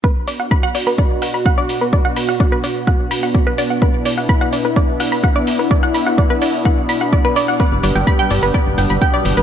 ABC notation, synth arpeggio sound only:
X:1
M:4/4
L:1/16
Q:1/4=127
K:Bm
V:1 name="Synth arpeggio sound"
B z d f b f d B d z f b f d z B | d f b f d B d z f z b f d B d f | B z d f b f d B d z f b f d z B | d f b f d B d z f z b f d B d f |
B z d g b g d B d z g b g d z B |]